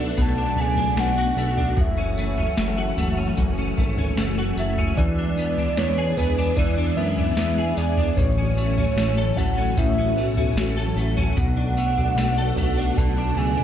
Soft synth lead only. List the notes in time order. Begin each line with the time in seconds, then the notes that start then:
0.21 A5
0.60 G#5
1.00 F#5
1.81 E5
4.59 E5
4.97 D5
5.78 C#5
6.17 B4
6.57 D5
6.97 E5
7.77 D5
8.17 C#5
9.37 F#5
9.79 E5
11.39 F#5
12.97 A5
13.37 G#5